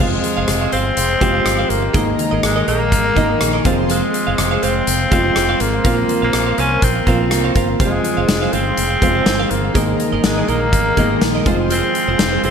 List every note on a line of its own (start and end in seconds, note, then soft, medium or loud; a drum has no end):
0.00 0.17 F1 loud
0.00 0.63 F3 medium
0.00 0.63 G#3 medium
0.00 5.81 G#3 medium
0.00 0.69 G#3 medium
0.00 0.63 C4 medium
0.00 0.63 F4 medium
0.00 0.19 G#4 medium
0.00 1.93 C5 medium
0.00 0.13 C5 medium
0.00 1.93 F5 medium
0.00 0.11 F5 medium
0.00 1.93 C6 medium
0.13 muted clean electric guitar stroke soft
0.23 muted clean electric guitar stroke soft
0.23 closed hi-hat medium
0.37 0.45 F1 medium
0.37 0.47 G#4 soft
0.37 0.48 C5 medium
0.37 0.48 F5 medium
0.48 0.66 F1 medium
0.48 muted clean electric guitar stroke soft
0.48 cross-stick loud
0.48 closed hi-hat medium
0.61 0.71 G#4 soft
0.61 0.72 C5 medium
0.61 0.73 F5 medium
0.72 0.90 G1 medium
0.72 1.72 C4 loud
0.72 0.92 G#4 medium
0.72 0.86 C5 medium
0.72 0.84 F5 medium
0.72 closed hi-hat medium
0.86 muted clean electric guitar stroke soft
0.96 1.14 F1 medium
0.96 muted clean electric guitar stroke soft
0.96 closed hi-hat medium
1.10 muted clean electric guitar stroke soft
1.21 1.39 F1 medium
1.21 1.68 F3 medium
1.21 1.68 G#3 medium
1.21 1.68 C4 medium
1.21 1.69 G4 medium
1.21 1.35 G#4 medium
1.21 1.34 C5 medium
1.21 1.33 F5 medium
1.21 kick medium
1.21 closed hi-hat medium
1.34 1.44 G#4 medium
1.34 1.45 C5 medium
1.34 1.45 F5 medium
1.45 1.63 G1 medium
1.45 muted clean electric guitar stroke soft
1.45 cross-stick loud
1.45 closed hi-hat medium
1.58 1.68 G#4 medium
1.58 1.69 C5 medium
1.58 1.69 F5 medium
1.69 1.88 G1 medium
1.69 2.19 A#3 medium
1.69 muted clean electric guitar stroke soft
1.69 closed hi-hat medium
1.83 muted clean electric guitar stroke soft
1.93 2.12 G#1 medium
1.93 2.58 D#3 medium
1.93 2.58 G#3 medium
1.93 2.58 A#3 medium
1.93 2.58 D#4 medium
1.93 2.14 G#4 medium
1.93 2.08 A#4 medium
1.93 3.64 A#4 medium
1.93 3.64 D#5 medium
1.93 2.06 D#5 medium
1.93 3.64 A#5 medium
1.93 kick loud
1.93 closed hi-hat medium
2.07 muted clean electric guitar stroke soft
2.18 muted clean electric guitar stroke soft
2.18 closed hi-hat medium
2.31 2.40 G#1 medium
2.31 2.41 G#4 medium
2.31 2.42 A#4 medium
2.31 2.43 D#5 medium
2.43 2.61 G#1 medium
2.43 2.66 G#3 medium
2.43 muted clean electric guitar stroke soft
2.43 cross-stick loud
2.43 closed hi-hat medium
2.56 2.66 G#4 medium
2.56 2.67 A#4 medium
2.56 2.67 D#5 medium
2.67 2.92 A#1 medium
2.67 3.62 A#3 loud
2.67 2.87 G#4 medium
2.67 2.81 A#4 medium
2.67 2.79 D#5 medium
2.67 closed hi-hat medium
2.81 muted clean electric guitar stroke soft
2.91 3.10 G#1 medium
2.91 muted clean electric guitar stroke soft
2.91 kick medium
2.91 closed hi-hat medium
3.05 muted clean electric guitar stroke soft
3.16 3.34 G#1 medium
3.16 3.63 D#3 medium
3.16 3.63 G#3 medium
3.16 3.64 A#3 medium
3.16 3.64 D#4 medium
3.16 3.30 G#4 medium
3.16 3.29 A#4 medium
3.16 3.28 D#5 medium
3.16 kick medium
3.16 closed hi-hat medium
3.29 3.39 G#4 soft
3.29 3.40 A#4 medium
3.29 3.40 D#5 medium
3.40 3.58 A#1 medium
3.40 muted clean electric guitar stroke soft
3.40 cross-stick loud
3.40 closed hi-hat medium
3.53 3.63 G#4 soft
3.53 3.65 A#4 medium
3.53 3.66 D#5 medium
3.64 4.00 F1 loud
3.64 4.43 F3 medium
3.64 4.44 G#3 medium
3.64 4.44 C4 medium
3.64 4.44 F4 loud
3.64 3.85 G#4 medium
3.64 3.79 C5 medium
3.64 9.71 C5 medium
3.64 7.76 F5 medium
3.64 3.77 F5 medium
3.64 9.71 C6 medium
3.64 kick medium
3.64 closed hi-hat medium
3.78 muted clean electric guitar stroke soft
3.89 4.65 G#3 medium
3.89 4.09 G#4 medium
3.89 4.03 C5 medium
3.89 4.01 F5 medium
3.89 closed hi-hat medium
4.02 muted clean electric guitar stroke soft
4.14 muted clean electric guitar stroke soft
4.14 closed hi-hat medium
4.27 4.35 F1 medium
4.27 4.37 G#4 medium
4.27 4.38 C5 medium
4.27 4.38 F5 medium
4.38 4.56 F1 loud
4.38 muted clean electric guitar stroke soft
4.38 cross-stick loud
4.38 closed hi-hat medium
4.51 4.61 G#4 medium
4.51 4.62 C5 medium
4.51 4.63 F5 medium
4.62 4.80 F1 medium
4.62 5.63 C4 loud
4.62 4.83 G#4 medium
4.62 4.76 C5 medium
4.62 4.75 F5 medium
4.62 closed hi-hat medium
4.76 muted clean electric guitar stroke soft
4.87 5.05 F1 medium
4.87 muted clean electric guitar stroke soft
4.87 closed hi-hat loud
5.00 muted clean electric guitar stroke soft
5.11 5.29 F1 loud
5.11 5.58 F3 medium
5.11 5.59 G#3 medium
5.11 5.59 C4 medium
5.11 5.59 F4 medium
5.11 5.25 G#4 medium
5.11 5.24 C5 medium
5.11 5.23 F5 medium
5.11 kick medium
5.11 closed hi-hat medium
5.25 5.35 G#4 soft
5.25 5.35 C5 medium
5.25 5.36 F5 medium
5.36 5.54 F1 medium
5.36 muted clean electric guitar stroke soft
5.36 cross-stick loud
5.36 closed hi-hat medium
5.49 5.59 G#4 medium
5.49 5.60 C5 medium
5.49 5.60 F5 medium
5.60 5.78 G#1 medium
5.60 6.23 A#3 medium
5.60 muted clean electric guitar stroke soft
5.60 closed hi-hat medium
5.74 muted clean electric guitar stroke soft
5.84 6.02 A#1 loud
5.84 6.48 F3 medium
5.84 6.48 A#3 medium
5.84 6.49 C4 medium
5.84 6.49 F4 medium
5.84 6.05 A#4 medium
5.84 7.78 A#4 medium
5.84 5.98 C5 medium
5.84 5.97 F5 medium
5.84 kick loud
5.84 closed hi-hat medium
5.98 muted clean electric guitar stroke soft
6.09 muted clean electric guitar stroke soft
6.09 closed hi-hat medium
6.22 6.31 A#1 medium
6.22 6.61 A#3 medium
6.22 6.32 A#4 soft
6.22 6.33 C5 soft
6.22 6.33 F5 medium
6.33 6.51 A#1 medium
6.33 muted clean electric guitar stroke soft
6.33 cross-stick loud
6.33 closed hi-hat medium
6.46 6.56 A#4 soft
6.46 6.58 C5 medium
6.46 6.58 F5 medium
6.58 6.76 C2 medium
6.58 6.85 C#4 loud
6.58 6.78 A#4 medium
6.58 6.71 C5 medium
6.58 6.70 F5 medium
6.58 closed hi-hat medium
6.71 muted clean electric guitar stroke soft
6.82 7.00 A#1 medium
6.82 7.56 C4 medium
6.82 muted clean electric guitar stroke soft
6.82 kick medium
6.82 closed hi-hat medium
6.96 muted clean electric guitar stroke soft
7.06 7.31 A#1 medium
7.06 7.53 F3 medium
7.06 7.54 A#3 medium
7.06 7.54 C4 medium
7.06 7.54 F4 medium
7.06 7.21 A#4 medium
7.06 7.20 C5 medium
7.06 7.19 F5 medium
7.06 kick medium
7.06 closed hi-hat medium
7.20 7.30 A#4 soft
7.20 7.31 C5 medium
7.20 7.31 F5 medium
7.31 7.49 C2 medium
7.31 muted clean electric guitar stroke soft
7.31 cross-stick medium
7.31 closed hi-hat medium
7.44 7.54 A#4 soft
7.44 7.55 C5 soft
7.44 7.56 F5 medium
7.55 7.73 G1 medium
7.55 7.75 A#4 medium
7.55 7.69 C5 medium
7.55 7.67 F5 medium
7.55 kick medium
7.55 closed hi-hat medium
7.69 muted clean electric guitar stroke soft
7.79 7.98 F1 loud
7.79 8.43 F3 medium
7.79 7.86 G3 medium
7.79 8.55 G#3 medium
7.79 8.43 C4 medium
7.79 8.44 F4 medium
7.79 8.00 G#4 medium
7.79 9.73 G#4 medium
7.79 7.93 C5 medium
7.79 9.73 F5 medium
7.79 7.92 F5 medium
7.79 kick loud
7.79 closed hi-hat medium
7.85 8.46 G#3 medium
7.93 muted clean electric guitar stroke soft
8.04 muted clean electric guitar stroke soft
8.04 closed hi-hat medium
8.17 8.26 F1 medium
8.17 8.27 G#4 soft
8.17 8.28 C5 medium
8.17 8.28 F5 medium
8.28 8.46 F1 loud
8.28 muted clean electric guitar stroke soft
8.28 snare loud
8.28 closed hi-hat medium
8.42 8.51 G#4 soft
8.42 8.52 C5 medium
8.42 8.53 F5 medium
8.53 8.71 G1 medium
8.53 9.53 C4 loud
8.53 8.73 G#4 medium
8.53 8.67 C5 medium
8.53 8.65 F5 medium
8.53 closed hi-hat medium
8.66 muted clean electric guitar stroke soft
8.77 8.95 F1 medium
8.77 muted clean electric guitar stroke soft
8.77 closed hi-hat medium
8.91 muted clean electric guitar stroke soft
9.01 9.20 F1 medium
9.01 9.49 F3 medium
9.01 9.49 G#3 medium
9.01 9.49 C4 medium
9.01 9.49 F4 medium
9.01 9.16 G#4 medium
9.01 9.15 C5 medium
9.01 9.14 F5 medium
9.01 kick medium
9.01 closed hi-hat medium
9.15 9.25 G#4 medium
9.15 9.26 C5 medium
9.15 9.26 F5 medium
9.26 9.44 G1 medium
9.26 muted clean electric guitar stroke soft
9.26 snare loud
9.26 closed hi-hat medium
9.39 9.49 G#4 medium
9.39 9.50 C5 medium
9.39 9.50 F5 medium
9.50 9.68 G1 medium
9.50 10.00 A#3 medium
9.50 muted clean electric guitar stroke soft
9.50 closed hi-hat medium
9.64 muted clean electric guitar stroke soft
9.74 9.93 G#1 loud
9.74 10.38 D#3 medium
9.74 10.39 G#3 medium
9.74 10.39 A#3 medium
9.74 10.39 D#4 medium
9.74 9.95 G#4 medium
9.74 12.51 G#4 medium
9.74 11.44 A#4 medium
9.74 9.88 A#4 medium
9.74 11.44 D#5 medium
9.74 9.87 D#5 medium
9.74 11.44 A#5 medium
9.74 kick loud
9.74 closed hi-hat medium
9.88 muted clean electric guitar stroke soft
9.99 muted clean electric guitar stroke soft
9.99 closed hi-hat medium
10.12 10.21 G#1 medium
10.12 10.22 G#4 soft
10.12 10.23 A#4 soft
10.12 10.24 D#5 medium
10.24 10.41 G#1 medium
10.24 10.51 G#3 medium
10.24 muted clean electric guitar stroke soft
10.24 snare loud
10.24 closed hi-hat medium
10.37 10.47 G#4 soft
10.37 10.48 A#4 medium
10.37 10.49 D#5 medium
10.48 10.73 A#1 medium
10.48 11.46 A#3 loud
10.48 10.68 G#4 medium
10.48 10.62 A#4 medium
10.48 10.60 D#5 medium
10.48 closed hi-hat medium
10.61 muted clean electric guitar stroke soft
10.73 10.90 G#1 medium
10.73 muted clean electric guitar stroke soft
10.73 kick medium
10.73 closed hi-hat medium
10.86 muted clean electric guitar stroke soft
10.97 11.15 G#1 medium
10.97 11.44 D#3 medium
10.97 11.44 G#3 medium
10.97 11.45 A#3 medium
10.97 11.45 D#4 medium
10.97 11.11 G#4 medium
10.97 11.11 A#4 medium
10.97 11.09 D#5 medium
10.97 kick medium
10.97 closed hi-hat medium
11.11 11.20 G#4 soft
11.11 11.21 A#4 medium
11.11 11.22 D#5 medium
11.21 11.39 A#1 medium
11.21 muted clean electric guitar stroke soft
11.21 snare loud
11.21 closed hi-hat medium
11.35 11.46 G#4 soft
11.35 11.47 A#4 medium
11.35 11.50 D#5 medium
11.45 11.81 F1 medium
11.45 12.24 F3 medium
11.45 12.24 G#3 medium
11.45 12.25 C4 medium
11.45 11.66 F4 medium
11.45 12.25 F4 loud
11.45 11.59 G#4 medium
11.45 12.51 C5 medium
11.45 11.58 C5 medium
11.45 12.51 F5 medium
11.45 12.51 C6 medium
11.45 kick loud
11.45 closed hi-hat medium
11.59 muted clean electric guitar stroke soft
11.70 12.40 C4 loud
11.70 11.90 F4 medium
11.70 11.84 G#4 medium
11.70 11.83 C5 medium
11.70 closed hi-hat medium
11.84 muted clean electric guitar stroke soft
11.95 muted clean electric guitar stroke soft
11.95 closed hi-hat medium
12.08 12.16 F1 medium
12.08 12.18 F4 soft
12.08 12.19 G#4 soft
12.08 12.19 C5 medium
12.19 12.37 F1 medium
12.19 muted clean electric guitar stroke soft
12.19 snare loud
12.19 closed hi-hat medium
12.32 12.42 F4 soft
12.32 12.43 G#4 medium
12.32 12.44 C5 medium
12.43 12.51 F1 medium
12.43 12.51 C4 loud
12.43 12.51 F4 medium
12.43 12.51 G#4 medium
12.43 12.51 C5 loud
12.43 closed hi-hat medium